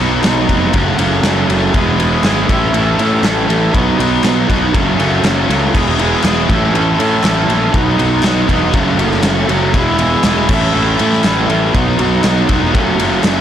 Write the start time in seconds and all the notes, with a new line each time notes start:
0.00 B1 B2 F#3 B3 D#4 F#4
0.23 B1 B2 F#3 B3 D#4 F#4, snare, clap, ride
0.48 F1 B2 F#3 B3 D#4 F#4, kick, ride
0.73 F#1 F#2 C#3 F#3 A3 C#4 F#4, kick, ride
0.97 F#1 F#2 C#3 F#3 A3 C#4 F#4, ride
1.23 F#1 F#2 C#3 F#3 A3 C#4 F#4, snare, clap, ride
1.49 F#1 F#2 C#3 F#3 A3 C#4 F#4, ride
1.74 E1 E2 B2 E3 G#3 B3 E4 G#4, kick, ride
1.98 E2 B2 E3 G#3 B3 E4 G#4, ride
2.23 G#1 E2 B2 E3 G#3 B3 E4 G#4, snare, clap, ride
2.48 A1 A2 E3 A3 C#4 E4 A4, kick, ride
2.73 A1 A2 E3 A3 C#4 E4 A4, ride
2.98 A2 E3 A3 C#4 E4 A4, ride
3.23 A1 A2 E3 A3 C#4 E4 A4, snare, clap, ride
3.48 A1 A2 E3 A3 C#4 E4 A4, ride
3.72 B1 B2 F#3 B3 D#4 F#4, kick, ride
3.98 B1 B2 F#3 B3 D#4 F#4, ride
4.23 B1 B2 F#3 B3 D#4 F#4, snare, clap, ride
4.48 B1 B2 F#3 B3 D#4 F#4, kick, ride
4.73 F#1 F#2 C#3 F#3 A3 C#4 F#4, kick, ride
4.98 F#1 F#2 C#3 F#3 A3 C#4 F#4, ride
5.23 F#1 F#2 C#3 F#3 A3 C#4 F#4, snare, clap, ride
5.48 C#2 F#2 C#3 F#3 A3 C#4 F#4, ride
5.72 E1 E2 B2 E3 G#3 B3 E4 G#4, kick, crash
5.98 E2 B2 E3 G#3 B3 E4 G#4, ride
6.22 E1 E2 B2 E3 G#3 B3 E4 G#4, snare, clap, ride
6.48 A1 A2 E3 A3 C#4 E4 A4, kick, ride
6.73 A1 A2 E3 A3 C#4 E4 A4, ride
6.98 A2 E3 A3 C#4 E4 A4, ride
7.23 A1 A2 E3 A3 C#4 E4 A4, snare, clap, ride
7.48 A#1 A2 E3 A3 C#4 E4 A4, ride
7.73 B1 B2 F#3 B3 D#4 F#4, kick, ride
7.98 B1 B2 F#3 B3 D#4 F#4, ride
8.22 B1 B2 F#3 B3 D#4 F#4, snare, clap, ride
8.47 E1 B2 F#3 B3 D#4 F#4, kick, ride
8.73 F#1 F#2 C#3 F#3 A3 C#4 F#4, kick, ride
8.97 F#1 F#2 C#3 F#3 A3 C#4 F#4, ride
9.11 snare
9.22 F#1 F#2 C#3 F#3 A3 C#4 F#4, snare, clap, ride
9.47 F#1 F#2 C#3 F#3 A3 C#4 F#4, ride
9.73 E1 E2 B2 E3 G#3 B3 E4, kick, ride
9.98 E2 B2 E3 G#3 B3 E4, ride
10.23 E1 E2 B2 E3 G#3 B3 E4, snare, clap, ride
10.48 A1 A2 E3 A3 C#4 E4, kick, crash
10.73 A1 A2 E3 A3 C#4 E4
10.98 A2 E3 A3 C#4 E4, ride
11.13 snare
11.23 A1 A2 E3 A3 C#4 E4, snare, clap, ride
11.48 A1 A2 E3 A3 C#4 E4, ride
11.73 B1 B2 F#3 B3 D#4 F#4, kick, ride
11.98 B1 B2 F#3 B3 D#4 F#4, ride
12.23 B1 B2 F#3 B3 D#4 F#4, snare, clap, ride
12.48 E1 B2 F#3 B3 D#4 F#4, kick, ride
12.73 F#1 F#2 C#3 F#3 A3 C#4 F#4, kick, ride
12.99 F#1 F#2 C#3 F#3 A3 C#4 F#4, ride
13.24 F#1 F#2 C#3 F#3 A3 C#4 F#4, snare, clap, ride